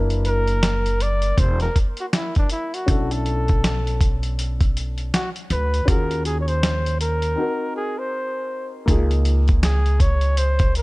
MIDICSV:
0, 0, Header, 1, 5, 480
1, 0, Start_track
1, 0, Tempo, 750000
1, 1843, Time_signature, 4, 2, 24, 8
1, 6927, End_track
2, 0, Start_track
2, 0, Title_t, "Flugelhorn"
2, 0, Program_c, 0, 56
2, 170, Note_on_c, 0, 70, 107
2, 651, Note_on_c, 0, 74, 91
2, 661, Note_off_c, 0, 70, 0
2, 890, Note_on_c, 0, 72, 88
2, 900, Note_off_c, 0, 74, 0
2, 1032, Note_off_c, 0, 72, 0
2, 1037, Note_on_c, 0, 70, 82
2, 1140, Note_off_c, 0, 70, 0
2, 1280, Note_on_c, 0, 66, 78
2, 1320, Note_off_c, 0, 66, 0
2, 1377, Note_on_c, 0, 64, 88
2, 1506, Note_off_c, 0, 64, 0
2, 1519, Note_on_c, 0, 62, 83
2, 1602, Note_off_c, 0, 62, 0
2, 1611, Note_on_c, 0, 64, 85
2, 1756, Note_on_c, 0, 66, 81
2, 1765, Note_off_c, 0, 64, 0
2, 1998, Note_on_c, 0, 69, 82
2, 2007, Note_off_c, 0, 66, 0
2, 2713, Note_off_c, 0, 69, 0
2, 3292, Note_on_c, 0, 66, 93
2, 3394, Note_off_c, 0, 66, 0
2, 3533, Note_on_c, 0, 71, 94
2, 3769, Note_on_c, 0, 70, 92
2, 3779, Note_off_c, 0, 71, 0
2, 4002, Note_off_c, 0, 70, 0
2, 4006, Note_on_c, 0, 68, 98
2, 4089, Note_off_c, 0, 68, 0
2, 4099, Note_on_c, 0, 73, 73
2, 4146, Note_on_c, 0, 72, 116
2, 4156, Note_off_c, 0, 73, 0
2, 4482, Note_off_c, 0, 72, 0
2, 4485, Note_on_c, 0, 70, 92
2, 4939, Note_off_c, 0, 70, 0
2, 4967, Note_on_c, 0, 68, 86
2, 5112, Note_on_c, 0, 72, 80
2, 5121, Note_off_c, 0, 68, 0
2, 5590, Note_off_c, 0, 72, 0
2, 6166, Note_on_c, 0, 68, 97
2, 6407, Note_on_c, 0, 73, 94
2, 6416, Note_off_c, 0, 68, 0
2, 6644, Note_on_c, 0, 72, 97
2, 6654, Note_off_c, 0, 73, 0
2, 6884, Note_off_c, 0, 72, 0
2, 6891, Note_on_c, 0, 70, 89
2, 6927, Note_off_c, 0, 70, 0
2, 6927, End_track
3, 0, Start_track
3, 0, Title_t, "Grand piano"
3, 0, Program_c, 1, 0
3, 0, Note_on_c, 1, 58, 72
3, 0, Note_on_c, 1, 62, 62
3, 0, Note_on_c, 1, 64, 64
3, 0, Note_on_c, 1, 70, 81
3, 1810, Note_off_c, 1, 58, 0
3, 1815, Note_off_c, 1, 62, 0
3, 1820, Note_off_c, 1, 64, 0
3, 1825, Note_off_c, 1, 70, 0
3, 1832, Note_on_c, 1, 61, 68
3, 1842, Note_on_c, 1, 62, 58
3, 1853, Note_on_c, 1, 64, 55
3, 1861, Note_on_c, 1, 69, 66
3, 3732, Note_off_c, 1, 61, 0
3, 3737, Note_off_c, 1, 62, 0
3, 3742, Note_off_c, 1, 64, 0
3, 3746, Note_off_c, 1, 69, 0
3, 3747, Note_on_c, 1, 61, 64
3, 3758, Note_on_c, 1, 65, 60
3, 3766, Note_on_c, 1, 66, 56
3, 3777, Note_on_c, 1, 68, 70
3, 4696, Note_off_c, 1, 61, 0
3, 4701, Note_off_c, 1, 65, 0
3, 4706, Note_off_c, 1, 66, 0
3, 4708, Note_on_c, 1, 60, 61
3, 4711, Note_off_c, 1, 68, 0
3, 4716, Note_on_c, 1, 63, 58
3, 4725, Note_on_c, 1, 66, 59
3, 4736, Note_on_c, 1, 70, 69
3, 5656, Note_off_c, 1, 60, 0
3, 5660, Note_off_c, 1, 63, 0
3, 5665, Note_off_c, 1, 66, 0
3, 5669, Note_on_c, 1, 58, 74
3, 5671, Note_off_c, 1, 70, 0
3, 5680, Note_on_c, 1, 63, 62
3, 5687, Note_on_c, 1, 65, 67
3, 5699, Note_on_c, 1, 68, 82
3, 6927, Note_off_c, 1, 58, 0
3, 6927, Note_off_c, 1, 63, 0
3, 6927, Note_off_c, 1, 65, 0
3, 6927, Note_off_c, 1, 68, 0
3, 6927, End_track
4, 0, Start_track
4, 0, Title_t, "Upright bass"
4, 0, Program_c, 2, 32
4, 0, Note_on_c, 2, 30, 99
4, 856, Note_off_c, 2, 30, 0
4, 881, Note_on_c, 2, 28, 86
4, 1063, Note_off_c, 2, 28, 0
4, 1843, Note_on_c, 2, 35, 102
4, 3257, Note_off_c, 2, 35, 0
4, 3523, Note_on_c, 2, 38, 88
4, 3704, Note_off_c, 2, 38, 0
4, 3762, Note_on_c, 2, 39, 101
4, 4697, Note_off_c, 2, 39, 0
4, 5682, Note_on_c, 2, 37, 100
4, 6927, Note_off_c, 2, 37, 0
4, 6927, End_track
5, 0, Start_track
5, 0, Title_t, "Drums"
5, 65, Note_on_c, 9, 42, 51
5, 129, Note_off_c, 9, 42, 0
5, 159, Note_on_c, 9, 42, 59
5, 223, Note_off_c, 9, 42, 0
5, 304, Note_on_c, 9, 42, 43
5, 368, Note_off_c, 9, 42, 0
5, 402, Note_on_c, 9, 38, 104
5, 402, Note_on_c, 9, 42, 100
5, 466, Note_off_c, 9, 38, 0
5, 466, Note_off_c, 9, 42, 0
5, 550, Note_on_c, 9, 42, 52
5, 614, Note_off_c, 9, 42, 0
5, 643, Note_on_c, 9, 42, 72
5, 707, Note_off_c, 9, 42, 0
5, 780, Note_on_c, 9, 42, 47
5, 844, Note_off_c, 9, 42, 0
5, 881, Note_on_c, 9, 36, 96
5, 882, Note_on_c, 9, 42, 97
5, 945, Note_off_c, 9, 36, 0
5, 946, Note_off_c, 9, 42, 0
5, 1023, Note_on_c, 9, 42, 42
5, 1029, Note_on_c, 9, 38, 34
5, 1087, Note_off_c, 9, 42, 0
5, 1093, Note_off_c, 9, 38, 0
5, 1125, Note_on_c, 9, 36, 80
5, 1126, Note_on_c, 9, 42, 64
5, 1189, Note_off_c, 9, 36, 0
5, 1190, Note_off_c, 9, 42, 0
5, 1260, Note_on_c, 9, 42, 46
5, 1324, Note_off_c, 9, 42, 0
5, 1364, Note_on_c, 9, 38, 99
5, 1364, Note_on_c, 9, 42, 91
5, 1428, Note_off_c, 9, 38, 0
5, 1428, Note_off_c, 9, 42, 0
5, 1504, Note_on_c, 9, 42, 38
5, 1512, Note_on_c, 9, 36, 86
5, 1568, Note_off_c, 9, 42, 0
5, 1576, Note_off_c, 9, 36, 0
5, 1597, Note_on_c, 9, 42, 70
5, 1661, Note_off_c, 9, 42, 0
5, 1753, Note_on_c, 9, 42, 48
5, 1817, Note_off_c, 9, 42, 0
5, 1843, Note_on_c, 9, 36, 112
5, 1843, Note_on_c, 9, 42, 87
5, 1907, Note_off_c, 9, 36, 0
5, 1907, Note_off_c, 9, 42, 0
5, 1991, Note_on_c, 9, 42, 55
5, 2055, Note_off_c, 9, 42, 0
5, 2085, Note_on_c, 9, 42, 56
5, 2149, Note_off_c, 9, 42, 0
5, 2228, Note_on_c, 9, 42, 40
5, 2236, Note_on_c, 9, 36, 92
5, 2292, Note_off_c, 9, 42, 0
5, 2300, Note_off_c, 9, 36, 0
5, 2330, Note_on_c, 9, 38, 117
5, 2331, Note_on_c, 9, 42, 100
5, 2394, Note_off_c, 9, 38, 0
5, 2395, Note_off_c, 9, 42, 0
5, 2478, Note_on_c, 9, 42, 49
5, 2542, Note_off_c, 9, 42, 0
5, 2564, Note_on_c, 9, 36, 86
5, 2568, Note_on_c, 9, 42, 72
5, 2628, Note_off_c, 9, 36, 0
5, 2632, Note_off_c, 9, 42, 0
5, 2707, Note_on_c, 9, 42, 49
5, 2771, Note_off_c, 9, 42, 0
5, 2809, Note_on_c, 9, 42, 86
5, 2873, Note_off_c, 9, 42, 0
5, 2947, Note_on_c, 9, 42, 45
5, 2948, Note_on_c, 9, 36, 85
5, 3011, Note_off_c, 9, 42, 0
5, 3012, Note_off_c, 9, 36, 0
5, 3052, Note_on_c, 9, 42, 65
5, 3116, Note_off_c, 9, 42, 0
5, 3185, Note_on_c, 9, 42, 45
5, 3249, Note_off_c, 9, 42, 0
5, 3289, Note_on_c, 9, 38, 98
5, 3290, Note_on_c, 9, 42, 83
5, 3353, Note_off_c, 9, 38, 0
5, 3354, Note_off_c, 9, 42, 0
5, 3429, Note_on_c, 9, 42, 40
5, 3493, Note_off_c, 9, 42, 0
5, 3522, Note_on_c, 9, 42, 69
5, 3586, Note_off_c, 9, 42, 0
5, 3672, Note_on_c, 9, 42, 44
5, 3736, Note_off_c, 9, 42, 0
5, 3763, Note_on_c, 9, 36, 118
5, 3764, Note_on_c, 9, 42, 82
5, 3827, Note_off_c, 9, 36, 0
5, 3828, Note_off_c, 9, 42, 0
5, 3909, Note_on_c, 9, 42, 49
5, 3973, Note_off_c, 9, 42, 0
5, 4002, Note_on_c, 9, 42, 62
5, 4066, Note_off_c, 9, 42, 0
5, 4147, Note_on_c, 9, 42, 40
5, 4211, Note_off_c, 9, 42, 0
5, 4245, Note_on_c, 9, 38, 107
5, 4245, Note_on_c, 9, 42, 98
5, 4309, Note_off_c, 9, 38, 0
5, 4309, Note_off_c, 9, 42, 0
5, 4393, Note_on_c, 9, 42, 51
5, 4457, Note_off_c, 9, 42, 0
5, 4485, Note_on_c, 9, 42, 77
5, 4549, Note_off_c, 9, 42, 0
5, 4622, Note_on_c, 9, 42, 51
5, 4686, Note_off_c, 9, 42, 0
5, 5682, Note_on_c, 9, 36, 113
5, 5684, Note_on_c, 9, 42, 90
5, 5746, Note_off_c, 9, 36, 0
5, 5748, Note_off_c, 9, 42, 0
5, 5829, Note_on_c, 9, 42, 53
5, 5893, Note_off_c, 9, 42, 0
5, 5921, Note_on_c, 9, 42, 62
5, 5985, Note_off_c, 9, 42, 0
5, 6065, Note_on_c, 9, 42, 40
5, 6073, Note_on_c, 9, 36, 92
5, 6129, Note_off_c, 9, 42, 0
5, 6137, Note_off_c, 9, 36, 0
5, 6163, Note_on_c, 9, 38, 108
5, 6164, Note_on_c, 9, 42, 110
5, 6227, Note_off_c, 9, 38, 0
5, 6228, Note_off_c, 9, 42, 0
5, 6309, Note_on_c, 9, 42, 46
5, 6373, Note_off_c, 9, 42, 0
5, 6399, Note_on_c, 9, 36, 89
5, 6401, Note_on_c, 9, 42, 70
5, 6463, Note_off_c, 9, 36, 0
5, 6465, Note_off_c, 9, 42, 0
5, 6536, Note_on_c, 9, 42, 48
5, 6600, Note_off_c, 9, 42, 0
5, 6638, Note_on_c, 9, 42, 94
5, 6702, Note_off_c, 9, 42, 0
5, 6777, Note_on_c, 9, 42, 49
5, 6782, Note_on_c, 9, 36, 92
5, 6841, Note_off_c, 9, 42, 0
5, 6846, Note_off_c, 9, 36, 0
5, 6881, Note_on_c, 9, 42, 66
5, 6927, Note_off_c, 9, 42, 0
5, 6927, End_track
0, 0, End_of_file